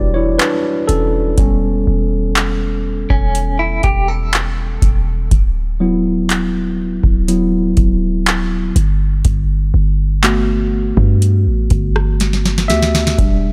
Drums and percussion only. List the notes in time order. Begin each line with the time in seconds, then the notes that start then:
0.39 clap, closed hi-hat
0.89 closed hi-hat
1.38 kick, closed hi-hat
2.36 clap, closed hi-hat
3.10 kick
3.35 closed hi-hat
3.83 kick, closed hi-hat
4.33 clap, closed hi-hat
4.82 kick, closed hi-hat
5.31 kick, closed hi-hat
6.30 clap, closed hi-hat
7.03 kick
7.28 closed hi-hat
7.77 kick, closed hi-hat
8.26 clap, closed hi-hat
8.76 closed hi-hat
9.25 kick, closed hi-hat
10.24 clap, closed hi-hat
10.97 kick
11.22 closed hi-hat
11.70 kick, closed hi-hat
11.96 cross-stick
12.20 snare, closed hi-hat
12.33 snare
12.46 snare
12.58 snare
12.70 snare, closed hi-hat
12.82 snare
12.95 snare
13.07 snare
13.18 kick, closed hi-hat